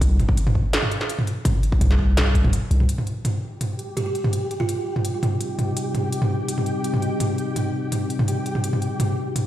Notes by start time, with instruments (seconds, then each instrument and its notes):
0.01 808-style bass C2, kick, closed hi-hat
0.20 closed hi-hat, mid tom
0.29 kick
0.37 closed hi-hat
0.47 mid tom
0.55 kick
0.73 snare, closed hi-hat
0.83 mid tom
0.91 closed hi-hat
1.01 snare
1.09 closed hi-hat
1.19 mid tom
1.27 closed hi-hat
1.45 kick, closed hi-hat, mid tom
1.63 closed hi-hat
1.72 kick
1.81 808-style bass C2, closed hi-hat, mid tom
1.90 snare
1.99 kick
2.17 snare, closed hi-hat, mid tom
2.35 808-style bass C2, kick, closed hi-hat
2.44 mid tom
2.53 closed hi-hat
2.71 808-style bass C2, closed hi-hat
2.80 mid tom
2.88 ambient pad C4 G4 D5 D#5, synth texture G4, closed hi-hat
2.98 mid tom
3.07 closed hi-hat
3.25 closed hi-hat, mid tom
3.61 closed hi-hat, mid tom
3.79 closed hi-hat
3.97 kalimba G4, closed hi-hat, mid tom
4.06 kalimba G4
4.15 closed hi-hat
4.24 mid tom
4.33 closed hi-hat
4.51 closed hi-hat
4.60 kalimba F4, mid tom
4.69 closed hi-hat
4.96 mid tom
5.05 closed hi-hat
5.23 closed hi-hat, mid tom
5.41 closed hi-hat
5.59 closed hi-hat, mid tom
5.77 closed hi-hat
5.95 closed hi-hat, mid tom
6.13 closed hi-hat
6.22 mid tom
6.48 closed hi-hat
6.58 mid tom
6.66 closed hi-hat
6.84 closed hi-hat
6.94 mid tom
7.02 closed hi-hat
7.20 closed hi-hat, mid tom
7.38 closed hi-hat
7.56 closed hi-hat, mid tom
7.92 closed hi-hat, mid tom
8.10 closed hi-hat
8.19 mid tom
8.28 closed hi-hat
8.46 closed hi-hat
8.55 mid tom
8.64 closed hi-hat
8.73 mid tom
8.82 closed hi-hat
9.00 closed hi-hat, mid tom
9.36 closed hi-hat, mid tom